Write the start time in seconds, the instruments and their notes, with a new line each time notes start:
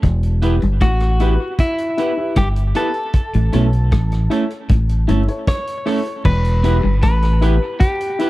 0.03 fingered electric bass E1, clean electric guitar E2, kick, closed hi-hat
0.23 closed hi-hat
0.42 clean electric guitar B3 E4 G4 B4, grand piano E4 G4 B4, closed hi-hat
0.62 fingered electric bass G1, clean electric guitar G2, closed hi-hat
0.81 fingered electric bass A1, clean electric guitar A2 F#4, kick, cross-stick, closed hi-hat
1.00 muted clean electric guitar stroke, cross-stick, closed hi-hat
1.20 clean electric guitar B3 E4 G4 B4, grand piano E4 G4 B4, closed hi-hat
1.41 grand piano G4 B4
1.58 clean electric guitar E4, kick, closed hi-hat
1.78 closed hi-hat
1.97 clean electric guitar B3 E4 G4 B4, grand piano E4 G4 B4, closed hi-hat
2.17 grand piano E4 G4 B4
2.36 fingered electric bass G1, clean electric guitar G2 G4, kick, cross-stick, closed hi-hat
2.56 closed hi-hat
2.75 clean electric guitar B3 E4 G4 A4 B4, grand piano E4 G4 B4, closed hi-hat
2.94 closed hi-hat
3.13 kick, closed hi-hat
3.34 fingered electric bass A1, clean electric guitar A2, closed hi-hat
3.52 fingered electric bass B1, clean electric guitar B2 A3 C#4 E4 A4, grand piano E4 A4 C#5, closed hi-hat
3.73 closed hi-hat
3.92 fingered electric bass A1, clean electric guitar A2, kick, cross-stick, closed hi-hat
4.11 muted clean electric guitar stroke, cross-stick, closed hi-hat
4.30 clean electric guitar A3 C#4 E4 A4, grand piano E4 A4 C#5, closed hi-hat
4.50 grand piano A4 C#5, closed hi-hat
4.69 fingered electric bass A1, clean electric guitar A2, kick, closed hi-hat
4.89 closed hi-hat
5.08 fingered electric bass G1, clean electric guitar G2 A3 C#4 E4 A4, grand piano E4 A4 C#5, closed hi-hat
5.28 grand piano E4 A4 C#5, closed hi-hat
5.47 clean electric guitar C#5, kick, cross-stick, closed hi-hat
5.67 closed hi-hat
5.86 clean electric guitar A3 C#4 E4 A4, grand piano E4 A4 C#5, cross-stick, open hi-hat
6.05 grand piano A4 C#5, closed hi-hat
6.25 fingered electric bass E1, clean electric guitar E2 B4, kick, crash
6.45 closed hi-hat
6.63 clean electric guitar B3 E4 G4 B4, grand piano E4 G4 B4, closed hi-hat
6.83 fingered electric bass G1, clean electric guitar G2
7.03 fingered electric bass A1, clean electric guitar A2 B4, kick, cross-stick, closed hi-hat
7.22 muted clean electric guitar stroke, cross-stick, closed hi-hat
7.41 clean electric guitar B3 E4 G4 B4, grand piano E4 G4 B4, closed hi-hat
7.62 grand piano G4 B4
7.80 clean electric guitar G4, kick, closed hi-hat
8.01 closed hi-hat
8.19 clean electric guitar B3 E4 G4 B4, grand piano E4 G4 B4, closed hi-hat